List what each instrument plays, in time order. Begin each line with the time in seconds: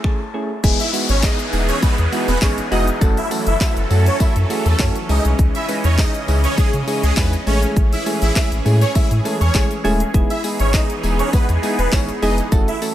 Already playing: noise sweep
0.04 synth keys A3 C#4 E4 G#4 A5, finger snap, kick
0.34 synth keys A3 C#4 E4 G#4
0.64 analog synth bass E1, supersaw synth E3 B3 D#4 G#4, synth keys G#3 B3 D#4 E4 G#4, kick, closed hi-hat, crash, tambourine, downlifter, shaker
0.80 supersaw synth E4 E5, closed hi-hat, shaker
0.93 synth keys G#3 B3 D#4 E4 F#4, open hi-hat, tambourine, shaker
1.09 analog synth bass G#1, supersaw synth C#4 C#5, closed hi-hat, shaker
1.23 synth keys G#3 B3 D#4 E4 G#4, supersaw synth D#4 D#5, kick, snare, clap, closed hi-hat, tambourine, shaker
1.39 closed hi-hat, shaker
1.53 analog synth bass E1, synth keys G#3 B3 D#4 E4 G#4, open hi-hat, tambourine, shaker
1.69 supersaw synth C#4 C#5, closed hi-hat, shaker
1.82 analog synth bass E2, synth keys G#3 B3 D#4 E4 G#4, supersaw synth B3 B4, kick, closed hi-hat, tambourine, shaker
1.98 analog synth bass E2, closed hi-hat, shaker
2.12 synth keys G#3 B3 D#4 E4 F#4, open hi-hat, tambourine, shaker
2.28 analog synth bass E1, supersaw synth B3 B4, closed hi-hat, shaker
2.42 analog synth bass G#1, synth keys G#3 B3 D#4 E4 G#4, supersaw synth C#4 C#5, kick, snare, clap, closed hi-hat, tambourine, shaker
2.58 closed hi-hat, shaker
2.71 analog synth bass F1, synth keys G#3 B3 D#4 E4 F#4, supersaw synth D#4 D#5, open hi-hat, tambourine, shaker
2.87 closed hi-hat, shaker
3.01 analog synth bass F#1, supersaw synth E3 F#3 C#4 A4, synth keys A3 C#4 E4 F#4 A4, kick, closed hi-hat, tambourine, shaker
3.17 supersaw synth E4 E5, closed hi-hat, shaker
3.31 synth keys A3 C#4 E4 F#4 A4, open hi-hat, tambourine, shaker
3.47 analog synth bass F#1, supersaw synth E4 E5, closed hi-hat, shaker
3.61 synth keys A3 C#4 E4 F#4 A4, supersaw synth E4 E5, kick, snare, clap, closed hi-hat, tambourine, shaker
3.76 analog synth bass F#1, closed hi-hat, shaker
3.90 analog synth bass F#2, synth keys A3 C#4 E4 F#4 A4, open hi-hat, tambourine, shaker
4.06 supersaw synth C#4 C#5, closed hi-hat, shaker
4.20 analog synth bass F#2, synth keys A3 C#4 E4 F#4 A4, supersaw synth E4 E5, kick, closed hi-hat, tambourine, shaker
4.36 analog synth bass F#2, closed hi-hat, shaker
4.50 synth keys A3 C#4 E4 F#4 G#4, open hi-hat, tambourine, shaker
4.66 analog synth bass E2, supersaw synth A3 A4, closed hi-hat, shaker
4.79 analog synth bass F#2, synth keys A3 C#4 E4 F#4 A4, supersaw synth C#4 C#5, kick, snare, clap, closed hi-hat, tambourine, shaker
4.95 closed hi-hat, shaker
5.09 analog synth bass C#2, supersaw synth C#3 D#4 D#5, synth keys G#3 C#4 D#4 E4 G#4, open hi-hat, tambourine, shaker
5.25 analog synth bass C2, closed hi-hat, shaker
5.39 analog synth bass C#2, kick, closed hi-hat, shaker
5.55 supersaw synth E4 E5, closed hi-hat, shaker
5.68 synth keys G#3 C#4 D#4 E4 B4, open hi-hat, tambourine, shaker
5.84 analog synth bass E2, supersaw synth C#4 C#5, closed hi-hat, shaker
5.98 synth keys G#3 C#4 D#4 E4 G#4, supersaw synth D#4 D#5, kick, snare, clap, closed hi-hat, tambourine, shaker
6.14 closed hi-hat, shaker
6.28 analog synth bass C#2, synth keys G#3 C#4 D#4 E4 G#4, open hi-hat, tambourine, shaker
6.44 supersaw synth C#4 C#5, closed hi-hat, shaker
6.57 analog synth bass C#3, synth keys G#3 C#4 D#4 E4 G#4, supersaw synth G#3 G#4, kick, closed hi-hat, tambourine, shaker
6.73 analog synth bass C#3, closed hi-hat, shaker
6.87 synth keys G#3 C#4 D#4 E4 G#4, open hi-hat, tambourine, shaker
7.03 analog synth bass C#2, supersaw synth G#3 G#4, closed hi-hat, shaker
7.17 analog synth bass E2, synth keys G#3 C#4 D#4 E4 G#4, supersaw synth B3 B4, kick, snare, clap, closed hi-hat, tambourine, shaker
7.33 closed hi-hat, shaker
7.47 analog synth bass A1, supersaw synth E3 C#4 G#4 C#5, synth keys G#3 A3 C#4 E4 G#4, open hi-hat, shaker
7.63 closed hi-hat, shaker
7.77 analog synth bass A1, kick, closed hi-hat, shaker
7.93 supersaw synth E4 E5, closed hi-hat, shaker
8.06 synth keys G#3 A3 C#4 E4 G#4, open hi-hat, tambourine, shaker
8.22 analog synth bass A1, supersaw synth E4 E5, closed hi-hat, shaker
8.35 synth keys G#3 A3 C#4 E4 G#4, supersaw synth E4 E5, kick, snare, clap, closed hi-hat, tambourine, shaker
8.52 analog synth bass A1, closed hi-hat, shaker
8.65 analog synth bass A2, synth keys G#3 A3 C#4 E4 G#4, open hi-hat, tambourine, shaker
8.81 supersaw synth C#4 C#5, closed hi-hat, shaker
8.95 analog synth bass A2, synth keys G#3 A3 C#4 E4 G#4, supersaw synth E4 E5, kick, closed hi-hat, tambourine, shaker
9.11 analog synth bass A2, closed hi-hat, shaker
9.25 synth keys G#3 A3 C#4 E4 A4, open hi-hat, tambourine, shaker
9.41 analog synth bass E2, supersaw synth C#4 C#5, closed hi-hat, shaker
9.55 analog synth bass A1, synth keys G#3 A3 C#4 E4 G#4, kick, snare, clap, closed hi-hat, tambourine, shaker
9.71 closed hi-hat, shaker
9.84 analog synth bass D#1, synth keys G#3 A3 C#4 E4 G#4, open hi-hat, tambourine, shaker
10.00 closed hi-hat, shaker
10.14 analog synth bass E1, supersaw synth E3 B3 D#4 G#4, synth keys G#3 B3 D#4 E4 G#4, kick, closed hi-hat, shaker
10.30 supersaw synth E4 E5, closed hi-hat, shaker
10.44 synth keys G#3 B3 D#4 E4 G#4, open hi-hat, tambourine, shaker
10.60 analog synth bass G#1, supersaw synth C#4 C#5, closed hi-hat, shaker
10.73 synth keys G#3 B3 D#4 E4 G#4, supersaw synth D#4 D#5, kick, snare, clap, closed hi-hat, tambourine, shaker
10.90 closed hi-hat, shaker
11.03 analog synth bass E1, synth keys G#3 B3 D#4 E4 G#4, open hi-hat, tambourine, shaker
11.19 supersaw synth C#4 C#5, closed hi-hat, shaker
11.33 analog synth bass E2, synth keys G#3 B3 D#4 E4 G#4, supersaw synth B3 B4, kick, closed hi-hat, tambourine, shaker
11.49 analog synth bass E2, closed hi-hat, shaker
11.63 synth keys G#3 B3 D#4 E4 G#4, open hi-hat, tambourine, shaker
11.79 analog synth bass E1, supersaw synth B3 B4, closed hi-hat, shaker
11.92 analog synth bass G#1, synth keys G#3 B3 D#4 E4 G#4, supersaw synth C#4 C#5, kick, snare, clap, closed hi-hat, tambourine, shaker
12.09 closed hi-hat, shaker
12.22 analog synth bass F1, synth keys G#3 B3 D#4 E4 G#4, supersaw synth D#4 D#5, open hi-hat, tambourine, shaker
12.38 closed hi-hat, shaker
12.52 analog synth bass F#1, supersaw synth E3 F#3 C#4 A4, synth keys A3 C#4 E4 F#4 A4, kick, closed hi-hat, tambourine, shaker
12.68 supersaw synth E4 E5, closed hi-hat, shaker
12.82 synth keys A3 C#4 E4 F#4 A4, open hi-hat, tambourine, shaker